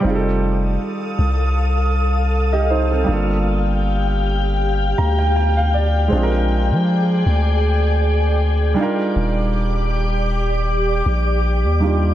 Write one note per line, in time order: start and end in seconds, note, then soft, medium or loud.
0.00 3.02 G3 medium
0.00 2.27 C4 medium
0.04 0.77 F1 loud
0.04 2.28 D#4 medium
0.04 2.29 F4 medium
0.04 3.05 A4 medium
0.04 6.08 F5 medium
0.04 3.05 D#6 medium
0.09 0.14 G#4 medium
0.15 2.34 A4 medium
1.19 3.04 C2 medium
2.53 2.70 G4 medium
2.53 2.69 D#5 medium
2.70 2.90 D#4 medium
2.70 2.90 C5 medium
2.91 3.27 C4 medium
2.91 3.11 A4 medium
3.04 6.06 G3 medium
3.04 6.07 A#3 medium
3.08 4.94 G1 loud
3.08 6.08 D4 medium
3.08 6.09 F4 medium
3.08 6.09 G4 medium
3.08 8.74 G5 medium
3.12 6.10 A4 medium
4.98 6.08 D2 loud
4.98 5.17 A#5 medium
5.19 5.35 G5 medium
5.36 5.55 G5 medium
5.57 5.73 F5 medium
5.74 6.09 D5 medium
6.08 8.72 G#3 medium
6.08 8.73 C4 medium
6.08 8.75 D5 medium
6.12 6.72 A#1 loud
6.12 8.74 D4 medium
6.12 8.75 F4 medium
6.12 8.75 G#4 medium
6.17 6.21 G#4 medium
6.23 8.79 A#4 medium
6.71 7.23 F3 loud
7.26 8.74 D2 medium
8.74 11.76 G3 medium
8.74 11.77 D4 medium
8.78 11.78 D#4 medium
8.78 11.79 F4 medium
8.78 12.14 G4 medium
8.78 12.14 D5 medium
8.78 12.14 D6 medium
8.83 11.80 A#4 medium
9.16 11.02 D#1 loud
11.06 11.66 A#1 loud
11.64 12.14 D#2 loud
11.80 12.14 G3 medium
11.80 12.14 D4 soft
11.80 12.14 D#4 soft
11.80 12.14 F4 medium
11.84 12.14 G4 medium